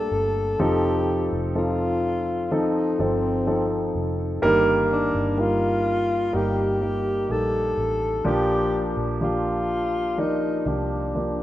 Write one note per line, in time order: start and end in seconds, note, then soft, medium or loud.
0.00 0.61 G3 medium
0.00 0.62 A3 soft
0.00 0.61 A#3 soft
0.00 0.61 D4 soft
0.00 0.60 A4 medium
0.00 0.62 A4 medium
0.12 0.56 G1 medium
0.59 1.28 F1 medium
0.59 1.51 F3 medium
0.59 1.51 C4 medium
0.59 1.51 D#4 medium
0.59 1.30 G4 medium
0.59 1.51 A4 medium
1.33 2.96 F1 medium
1.55 2.47 F3 medium
1.55 2.47 C4 soft
1.55 2.47 D#4 soft
1.55 2.55 F4 medium
1.55 2.47 A4 medium
2.51 2.97 F3 medium
2.51 2.97 C4 medium
2.51 2.97 D#4 medium
2.51 3.03 D#4 medium
2.51 2.97 A4 medium
2.99 3.91 G1 medium
2.99 3.45 F3 soft
2.99 3.45 C4 soft
2.99 3.96 C4 medium
2.99 3.45 D#4 soft
2.99 3.45 A4 medium
3.47 4.38 F3 soft
3.47 4.38 C4 soft
3.47 4.38 D#4 soft
3.47 4.38 A4 medium
3.95 4.40 F1 medium
4.42 5.10 G1 medium
4.42 5.82 G2 medium
4.42 5.33 D#3 medium
4.42 5.33 G3 medium
4.42 5.33 A#3 medium
4.42 5.33 A#4 loud
4.93 5.42 D4 medium
5.15 6.30 G1 medium
5.38 6.29 G3 medium
5.38 6.29 A#3 medium
5.38 6.29 D#4 soft
5.38 6.37 F4 medium
5.38 6.29 A#4 medium
6.33 7.26 G1 medium
6.33 6.79 G3 medium
6.33 6.79 A#3 soft
6.33 6.79 D#4 medium
6.33 7.33 G4 medium
6.33 6.79 A#4 medium
6.81 7.27 G3 soft
6.81 7.27 A#3 soft
6.81 7.27 D#4 soft
6.81 7.27 A#4 medium
7.29 7.74 A#1 medium
7.29 8.20 G3 soft
7.29 8.20 A#3 soft
7.29 8.20 D#4 soft
7.29 8.20 G4 soft
7.29 8.26 A4 medium
7.77 8.22 A1 medium
8.25 8.93 A#1 medium
8.25 9.65 A#2 soft
8.25 9.16 F3 medium
8.25 9.16 A#3 medium
8.25 9.16 D4 medium
8.25 9.16 G4 medium
8.25 8.91 G4 medium
8.97 10.62 A#1 medium
9.21 10.13 F3 soft
9.21 10.13 A#3 soft
9.21 10.13 D4 soft
9.21 10.21 F4 medium
9.21 10.13 G4 medium
10.18 10.64 F3 medium
10.18 10.64 A#3 soft
10.18 10.69 D#4 medium
10.18 10.64 A#4 medium
10.18 10.64 D5 soft
10.66 11.43 C2 medium
10.66 11.12 F3 soft
10.66 11.12 A#3 soft
10.66 11.12 D4 soft
10.66 11.43 D4 medium
10.66 11.12 G4 medium
11.15 11.43 F3 soft
11.15 11.43 A#3 soft
11.15 11.43 D4 soft
11.15 11.43 G4 soft